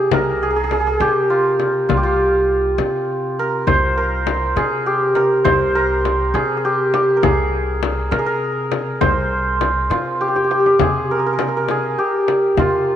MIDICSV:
0, 0, Header, 1, 5, 480
1, 0, Start_track
1, 0, Tempo, 593824
1, 89, Time_signature, 6, 3, 24, 8
1, 10475, End_track
2, 0, Start_track
2, 0, Title_t, "Santur"
2, 0, Program_c, 0, 15
2, 0, Note_on_c, 0, 64, 67
2, 0, Note_on_c, 0, 68, 72
2, 110, Note_on_c, 0, 70, 86
2, 341, Note_off_c, 0, 68, 0
2, 344, Note_on_c, 0, 68, 78
2, 404, Note_off_c, 0, 68, 0
2, 408, Note_on_c, 0, 68, 57
2, 451, Note_off_c, 0, 68, 0
2, 454, Note_on_c, 0, 68, 67
2, 512, Note_off_c, 0, 68, 0
2, 515, Note_on_c, 0, 68, 58
2, 580, Note_off_c, 0, 68, 0
2, 583, Note_on_c, 0, 68, 68
2, 643, Note_off_c, 0, 68, 0
2, 647, Note_on_c, 0, 68, 58
2, 698, Note_off_c, 0, 68, 0
2, 701, Note_on_c, 0, 68, 65
2, 817, Note_on_c, 0, 67, 80
2, 866, Note_off_c, 0, 68, 0
2, 1051, Note_on_c, 0, 65, 75
2, 1099, Note_off_c, 0, 64, 0
2, 1522, Note_off_c, 0, 65, 0
2, 1525, Note_on_c, 0, 65, 75
2, 1589, Note_off_c, 0, 67, 0
2, 1592, Note_on_c, 0, 67, 67
2, 1640, Note_off_c, 0, 65, 0
2, 1643, Note_on_c, 0, 65, 80
2, 2400, Note_off_c, 0, 70, 0
2, 2743, Note_on_c, 0, 70, 82
2, 2967, Note_on_c, 0, 72, 90
2, 3209, Note_off_c, 0, 70, 0
2, 3212, Note_on_c, 0, 70, 82
2, 3692, Note_on_c, 0, 68, 77
2, 3740, Note_off_c, 0, 67, 0
2, 3931, Note_on_c, 0, 67, 75
2, 3979, Note_off_c, 0, 68, 0
2, 4164, Note_off_c, 0, 70, 0
2, 4167, Note_on_c, 0, 70, 76
2, 4364, Note_off_c, 0, 65, 0
2, 4397, Note_off_c, 0, 72, 0
2, 4401, Note_on_c, 0, 72, 93
2, 4647, Note_off_c, 0, 70, 0
2, 4650, Note_on_c, 0, 70, 86
2, 5126, Note_on_c, 0, 68, 85
2, 5175, Note_off_c, 0, 67, 0
2, 5307, Note_off_c, 0, 68, 0
2, 5310, Note_on_c, 0, 68, 57
2, 5373, Note_on_c, 0, 67, 78
2, 5421, Note_off_c, 0, 68, 0
2, 5606, Note_off_c, 0, 67, 0
2, 5609, Note_on_c, 0, 67, 76
2, 5789, Note_off_c, 0, 70, 0
2, 5792, Note_on_c, 0, 70, 62
2, 5844, Note_on_c, 0, 68, 90
2, 5893, Note_off_c, 0, 67, 0
2, 6534, Note_off_c, 0, 72, 0
2, 6554, Note_off_c, 0, 70, 0
2, 6557, Note_on_c, 0, 70, 82
2, 6615, Note_off_c, 0, 68, 0
2, 6618, Note_on_c, 0, 68, 67
2, 6676, Note_off_c, 0, 70, 0
2, 6679, Note_on_c, 0, 70, 82
2, 7282, Note_on_c, 0, 72, 87
2, 8016, Note_on_c, 0, 65, 67
2, 8250, Note_on_c, 0, 67, 70
2, 8298, Note_off_c, 0, 68, 0
2, 8307, Note_off_c, 0, 67, 0
2, 8311, Note_on_c, 0, 67, 53
2, 8371, Note_off_c, 0, 67, 0
2, 8374, Note_on_c, 0, 67, 58
2, 8437, Note_off_c, 0, 67, 0
2, 8440, Note_on_c, 0, 67, 50
2, 8495, Note_off_c, 0, 67, 0
2, 8498, Note_on_c, 0, 67, 54
2, 8562, Note_off_c, 0, 67, 0
2, 8565, Note_on_c, 0, 67, 49
2, 8614, Note_off_c, 0, 67, 0
2, 8617, Note_on_c, 0, 67, 60
2, 8740, Note_on_c, 0, 68, 80
2, 8788, Note_off_c, 0, 67, 0
2, 8969, Note_off_c, 0, 70, 0
2, 8981, Note_on_c, 0, 70, 73
2, 9043, Note_off_c, 0, 70, 0
2, 9046, Note_on_c, 0, 70, 58
2, 9102, Note_off_c, 0, 70, 0
2, 9105, Note_on_c, 0, 70, 66
2, 9155, Note_off_c, 0, 70, 0
2, 9158, Note_on_c, 0, 70, 55
2, 9225, Note_off_c, 0, 70, 0
2, 9228, Note_on_c, 0, 70, 62
2, 9279, Note_off_c, 0, 70, 0
2, 9282, Note_on_c, 0, 70, 57
2, 9348, Note_off_c, 0, 70, 0
2, 9351, Note_on_c, 0, 70, 64
2, 9415, Note_off_c, 0, 72, 0
2, 9458, Note_off_c, 0, 68, 0
2, 9461, Note_on_c, 0, 68, 79
2, 9687, Note_on_c, 0, 67, 79
2, 9735, Note_off_c, 0, 68, 0
2, 10174, Note_off_c, 0, 65, 0
2, 10177, Note_on_c, 0, 65, 80
2, 10475, Note_off_c, 0, 65, 0
2, 10475, Note_off_c, 0, 67, 0
2, 10475, Note_off_c, 0, 70, 0
2, 10475, End_track
3, 0, Start_track
3, 0, Title_t, "Upright bass"
3, 0, Program_c, 1, 32
3, 90, Note_on_c, 1, 36, 85
3, 777, Note_off_c, 1, 36, 0
3, 808, Note_on_c, 1, 48, 90
3, 1496, Note_off_c, 1, 48, 0
3, 1528, Note_on_c, 1, 36, 84
3, 2216, Note_off_c, 1, 36, 0
3, 2247, Note_on_c, 1, 48, 87
3, 2935, Note_off_c, 1, 48, 0
3, 2965, Note_on_c, 1, 36, 83
3, 3654, Note_off_c, 1, 36, 0
3, 3688, Note_on_c, 1, 48, 89
3, 4375, Note_off_c, 1, 48, 0
3, 4402, Note_on_c, 1, 36, 84
3, 5092, Note_off_c, 1, 36, 0
3, 5123, Note_on_c, 1, 48, 88
3, 5812, Note_off_c, 1, 48, 0
3, 5842, Note_on_c, 1, 36, 87
3, 6532, Note_off_c, 1, 36, 0
3, 6561, Note_on_c, 1, 48, 89
3, 7251, Note_off_c, 1, 48, 0
3, 7288, Note_on_c, 1, 36, 86
3, 7975, Note_off_c, 1, 36, 0
3, 8002, Note_on_c, 1, 48, 78
3, 8691, Note_off_c, 1, 48, 0
3, 8729, Note_on_c, 1, 48, 90
3, 9654, Note_off_c, 1, 48, 0
3, 10163, Note_on_c, 1, 48, 95
3, 10475, Note_off_c, 1, 48, 0
3, 10475, End_track
4, 0, Start_track
4, 0, Title_t, "Frame drum"
4, 93, Note_on_c, 9, 64, 90
4, 173, Note_off_c, 9, 64, 0
4, 574, Note_on_c, 9, 64, 56
4, 655, Note_off_c, 9, 64, 0
4, 813, Note_on_c, 9, 64, 62
4, 894, Note_off_c, 9, 64, 0
4, 1290, Note_on_c, 9, 64, 55
4, 1371, Note_off_c, 9, 64, 0
4, 1532, Note_on_c, 9, 64, 83
4, 1613, Note_off_c, 9, 64, 0
4, 2250, Note_on_c, 9, 64, 64
4, 2331, Note_off_c, 9, 64, 0
4, 2969, Note_on_c, 9, 64, 74
4, 3050, Note_off_c, 9, 64, 0
4, 3450, Note_on_c, 9, 64, 70
4, 3531, Note_off_c, 9, 64, 0
4, 3693, Note_on_c, 9, 64, 62
4, 3774, Note_off_c, 9, 64, 0
4, 4165, Note_on_c, 9, 64, 56
4, 4246, Note_off_c, 9, 64, 0
4, 4407, Note_on_c, 9, 64, 83
4, 4488, Note_off_c, 9, 64, 0
4, 4892, Note_on_c, 9, 64, 62
4, 4973, Note_off_c, 9, 64, 0
4, 5133, Note_on_c, 9, 64, 62
4, 5214, Note_off_c, 9, 64, 0
4, 5608, Note_on_c, 9, 64, 57
4, 5689, Note_off_c, 9, 64, 0
4, 5845, Note_on_c, 9, 64, 85
4, 5926, Note_off_c, 9, 64, 0
4, 6327, Note_on_c, 9, 64, 74
4, 6408, Note_off_c, 9, 64, 0
4, 6565, Note_on_c, 9, 64, 73
4, 6646, Note_off_c, 9, 64, 0
4, 7046, Note_on_c, 9, 64, 67
4, 7127, Note_off_c, 9, 64, 0
4, 7284, Note_on_c, 9, 64, 84
4, 7365, Note_off_c, 9, 64, 0
4, 7768, Note_on_c, 9, 64, 69
4, 7848, Note_off_c, 9, 64, 0
4, 8010, Note_on_c, 9, 64, 68
4, 8091, Note_off_c, 9, 64, 0
4, 8725, Note_on_c, 9, 64, 89
4, 8806, Note_off_c, 9, 64, 0
4, 9205, Note_on_c, 9, 64, 69
4, 9285, Note_off_c, 9, 64, 0
4, 9445, Note_on_c, 9, 64, 62
4, 9526, Note_off_c, 9, 64, 0
4, 9928, Note_on_c, 9, 64, 63
4, 10009, Note_off_c, 9, 64, 0
4, 10164, Note_on_c, 9, 64, 82
4, 10245, Note_off_c, 9, 64, 0
4, 10475, End_track
5, 0, Start_track
5, 0, Title_t, "Tombak"
5, 2974, Note_on_c, 9, 64, 75
5, 3055, Note_off_c, 9, 64, 0
5, 3453, Note_on_c, 9, 63, 64
5, 3534, Note_off_c, 9, 63, 0
5, 3690, Note_on_c, 9, 63, 54
5, 3771, Note_off_c, 9, 63, 0
5, 4174, Note_on_c, 9, 63, 59
5, 4255, Note_off_c, 9, 63, 0
5, 4409, Note_on_c, 9, 64, 77
5, 4490, Note_off_c, 9, 64, 0
5, 4891, Note_on_c, 9, 63, 54
5, 4972, Note_off_c, 9, 63, 0
5, 5131, Note_on_c, 9, 63, 55
5, 5212, Note_off_c, 9, 63, 0
5, 5607, Note_on_c, 9, 63, 68
5, 5688, Note_off_c, 9, 63, 0
5, 5846, Note_on_c, 9, 64, 81
5, 5927, Note_off_c, 9, 64, 0
5, 6563, Note_on_c, 9, 63, 60
5, 6644, Note_off_c, 9, 63, 0
5, 7044, Note_on_c, 9, 63, 64
5, 7125, Note_off_c, 9, 63, 0
5, 7285, Note_on_c, 9, 64, 83
5, 7366, Note_off_c, 9, 64, 0
5, 7770, Note_on_c, 9, 63, 58
5, 7851, Note_off_c, 9, 63, 0
5, 8006, Note_on_c, 9, 63, 53
5, 8087, Note_off_c, 9, 63, 0
5, 8254, Note_on_c, 9, 63, 48
5, 8335, Note_off_c, 9, 63, 0
5, 8372, Note_on_c, 9, 62, 61
5, 8453, Note_off_c, 9, 62, 0
5, 8495, Note_on_c, 9, 63, 71
5, 8576, Note_off_c, 9, 63, 0
5, 8617, Note_on_c, 9, 62, 80
5, 8698, Note_off_c, 9, 62, 0
5, 8735, Note_on_c, 9, 64, 82
5, 8816, Note_off_c, 9, 64, 0
5, 9214, Note_on_c, 9, 63, 60
5, 9294, Note_off_c, 9, 63, 0
5, 9456, Note_on_c, 9, 63, 55
5, 9537, Note_off_c, 9, 63, 0
5, 9926, Note_on_c, 9, 63, 69
5, 10007, Note_off_c, 9, 63, 0
5, 10168, Note_on_c, 9, 64, 79
5, 10249, Note_off_c, 9, 64, 0
5, 10475, End_track
0, 0, End_of_file